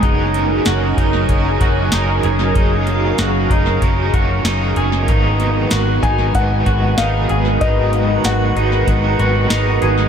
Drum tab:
HH |xxxxxxxx|xxxxxxxx|xxxxxxxx|xxxxxxxx|
SD |--o---o-|--o---o-|--o---o-|--o---o-|
BD |o--ooo--|o--ooo--|o--ooo--|o---o---|